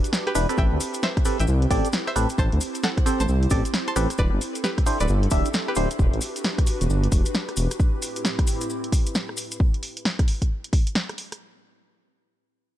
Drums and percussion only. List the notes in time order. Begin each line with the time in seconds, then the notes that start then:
0.04 closed hi-hat, maracas
0.13 snare, maracas
0.27 cross-stick, closed hi-hat
0.35 open hi-hat, maracas
0.49 cross-stick, closed hi-hat, maracas
0.57 kick, maracas
0.80 open hi-hat, maracas
0.94 closed hi-hat, maracas
1.03 snare, maracas
1.17 kick, cross-stick, closed hi-hat
1.25 open hi-hat, maracas
1.40 closed hi-hat, maracas
1.47 maracas
1.62 closed hi-hat
1.71 kick, open hi-hat, maracas
1.85 closed hi-hat, maracas
1.93 snare, maracas
2.07 cross-stick
2.16 open hi-hat, maracas
2.29 closed hi-hat, maracas
2.38 kick, maracas
2.52 closed hi-hat
2.61 open hi-hat, maracas
2.75 closed hi-hat, maracas
2.83 snare, maracas
2.97 kick, cross-stick, closed hi-hat
3.06 open hi-hat, maracas
3.20 closed hi-hat, maracas
3.28 maracas
3.43 closed hi-hat
3.50 kick, open hi-hat, maracas
3.65 closed hi-hat, maracas
3.74 snare, maracas
3.88 cross-stick, closed hi-hat
3.96 open hi-hat, maracas
4.10 cross-stick, closed hi-hat, maracas
4.18 kick, maracas
4.41 open hi-hat, maracas
4.55 closed hi-hat, maracas
4.64 snare, maracas
4.78 kick, cross-stick, closed hi-hat
4.86 open hi-hat, maracas
5.00 closed hi-hat, maracas
5.08 maracas
5.23 closed hi-hat
5.31 kick, open hi-hat, maracas
5.45 closed hi-hat, maracas
5.53 snare, maracas
5.68 cross-stick
5.75 open hi-hat, maracas
5.91 closed hi-hat, maracas
5.99 kick, maracas
6.13 closed hi-hat
6.21 open hi-hat, maracas
6.36 closed hi-hat, maracas
6.44 snare, maracas
6.58 kick, cross-stick, closed hi-hat
6.67 open hi-hat, maracas
6.81 closed hi-hat, maracas
6.90 maracas
7.04 closed hi-hat
7.12 kick, open hi-hat, maracas
7.25 closed hi-hat, maracas
7.34 snare, maracas
7.49 cross-stick, closed hi-hat
7.57 open hi-hat, maracas
7.71 cross-stick, closed hi-hat, maracas
7.80 kick, maracas
8.02 open hi-hat, maracas
8.16 closed hi-hat, maracas
8.25 snare, maracas
8.39 kick, cross-stick, closed hi-hat
8.47 open hi-hat, maracas
8.61 closed hi-hat, maracas
8.70 maracas
8.84 closed hi-hat
8.92 kick, open hi-hat, maracas
9.06 closed hi-hat, maracas
9.15 snare, maracas
9.29 cross-stick
9.37 open hi-hat, maracas
9.51 closed hi-hat, maracas
9.60 kick
9.74 closed hi-hat
9.83 open hi-hat
9.97 closed hi-hat
10.05 snare
10.19 kick, cross-stick, closed hi-hat
10.28 open hi-hat
10.42 kick, closed hi-hat
10.64 closed hi-hat
10.73 kick, open hi-hat
10.87 closed hi-hat
10.95 snare
11.09 cross-stick, closed hi-hat
11.18 open hi-hat
11.32 cross-stick, closed hi-hat